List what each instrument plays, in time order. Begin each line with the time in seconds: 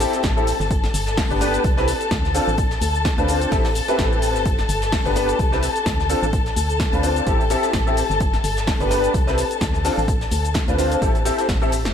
Already playing: string section A4 A5
0.00 grand piano C4 E4 G4 A4, closed hi-hat, open hi-hat, shaker
0.13 snare, closed hi-hat, shaker
0.23 fm bass A1, kick, snare, closed hi-hat, shaker
0.37 grand piano C4 E4 G4 A4, shaker
0.47 closed hi-hat, open hi-hat, shaker
0.60 fm bass G1, snare, shaker
0.70 kick, closed hi-hat, shaker
0.84 snare, closed hi-hat, shaker
0.94 fm bass G1, closed hi-hat, open hi-hat, shaker
1.07 snare, shaker
1.17 kick, snare, closed hi-hat, open hi-hat, shaker
1.31 fm bass G1, grand piano B3 D4 G4 B4, closed hi-hat, shaker
1.41 grand piano B3 D4 G4 B4, closed hi-hat, open hi-hat, shaker
1.54 closed hi-hat, shaker
1.64 fm bass C2, kick, closed hi-hat, shaker
1.77 grand piano C4 E4 G4 B4, snare, shaker
1.88 closed hi-hat, open hi-hat, shaker
2.01 closed hi-hat, shaker
2.11 fm bass D2, kick, snare, closed hi-hat, shaker
2.25 snare, shaker
2.35 grand piano C4 D4 F4 A4, closed hi-hat, open hi-hat, shaker
2.48 fm bass A1, shaker
2.58 kick, closed hi-hat, shaker
2.71 snare, closed hi-hat, shaker
2.81 fm bass D2, closed hi-hat, open hi-hat, shaker
2.95 closed hi-hat, shaker
3.05 kick, snare, closed hi-hat, shaker
3.18 fm bass D2, grand piano C4 D4 F4 B4, closed hi-hat, shaker
3.28 grand piano C4 D4 F4 C5, closed hi-hat, open hi-hat, shaker
3.42 closed hi-hat, shaker
3.52 fm bass A1, grand piano C4 E4 G4 A4, kick, snare, closed hi-hat, open hi-hat, shaker
3.65 snare, open hi-hat, shaker
3.75 closed hi-hat, open hi-hat, shaker
3.88 grand piano C4 E4 G4 B4, snare, closed hi-hat, shaker
3.99 fm bass A1, kick, snare, closed hi-hat, shaker
4.12 shaker
4.22 closed hi-hat, open hi-hat, shaker
4.35 fm bass G1, snare, shaker
4.46 kick, closed hi-hat, shaker
4.59 snare, closed hi-hat, shaker
4.69 fm bass G1, closed hi-hat, open hi-hat, shaker
4.82 snare, closed hi-hat, shaker
4.92 kick, snare, closed hi-hat, open hi-hat, shaker
5.05 fm bass G1, grand piano B3 D4 G4 B4, closed hi-hat, shaker
5.16 grand piano B3 D4 G4 B4, closed hi-hat, open hi-hat, shaker
5.29 closed hi-hat, shaker
5.39 fm bass C2, kick, closed hi-hat, shaker
5.52 grand piano C4 E4 G4 B4, snare, shaker
5.63 closed hi-hat, open hi-hat, shaker
5.76 closed hi-hat, shaker
5.86 fm bass D2, kick, snare, closed hi-hat, shaker
5.99 snare, shaker
6.09 grand piano C4 D4 F4 A4, closed hi-hat, open hi-hat, shaker
6.23 fm bass A1, shaker
6.33 kick, closed hi-hat, shaker
6.46 snare, closed hi-hat, shaker
6.56 fm bass D2, closed hi-hat, open hi-hat, shaker
6.69 closed hi-hat, shaker
6.80 kick, snare, closed hi-hat, shaker
6.93 fm bass D2, grand piano C4 D4 F4 B4, closed hi-hat, shaker
7.03 grand piano C4 D4 F4 C5, closed hi-hat, open hi-hat, shaker
7.16 closed hi-hat, shaker
7.27 fm bass A1, grand piano C4 E4 G4 A4, kick, closed hi-hat, shaker
7.40 closed hi-hat, shaker
7.50 grand piano C4 E4 G4 A4, closed hi-hat, open hi-hat, shaker
7.63 snare, closed hi-hat, shaker
7.73 fm bass A1, kick, snare, closed hi-hat, shaker
7.87 grand piano C4 E4 G4 A4, shaker
7.97 closed hi-hat, open hi-hat, shaker
8.10 fm bass G1, snare, shaker
8.20 kick, closed hi-hat, shaker
8.33 snare, closed hi-hat, shaker
8.44 fm bass G1, closed hi-hat, open hi-hat, shaker
8.57 snare, closed hi-hat, shaker
8.67 kick, snare, closed hi-hat, open hi-hat, shaker
8.80 fm bass G1, grand piano B3 D4 G4 B4, closed hi-hat, shaker
8.91 grand piano B3 D4 G4 B4, closed hi-hat, open hi-hat, shaker
9.04 closed hi-hat, shaker
9.14 fm bass C2, kick, closed hi-hat, shaker
9.27 grand piano C4 E4 G4 B4, snare, shaker
9.38 closed hi-hat, open hi-hat, shaker
9.51 closed hi-hat, shaker
9.61 fm bass D2, kick, snare, closed hi-hat, shaker
9.73 snare, shaker
9.85 grand piano C4 D4 F4 A4, snare, open hi-hat, shaker
9.98 fm bass A1, shaker
10.08 kick, closed hi-hat, shaker
10.21 snare, closed hi-hat, shaker
10.31 fm bass D2, closed hi-hat, open hi-hat, shaker
10.45 closed hi-hat, shaker
10.54 kick, snare, closed hi-hat, shaker
10.68 fm bass D2, grand piano C4 D4 F4 B4, closed hi-hat, shaker
10.78 grand piano C4 D4 F4 C5, snare, closed hi-hat, open hi-hat, shaker
10.92 closed hi-hat, shaker
11.02 fm bass A1, grand piano C4 E4 G4 A4, kick, closed hi-hat, shaker
11.15 closed hi-hat, shaker
11.25 grand piano C4 E4 G4 A4, closed hi-hat, open hi-hat, shaker
11.38 snare, closed hi-hat, shaker
11.49 fm bass A1, kick, snare, closed hi-hat, open hi-hat, shaker
11.62 grand piano C4 E4 G4 A4, shaker
11.72 closed hi-hat, open hi-hat, shaker
11.85 fm bass E1, snare, closed hi-hat, shaker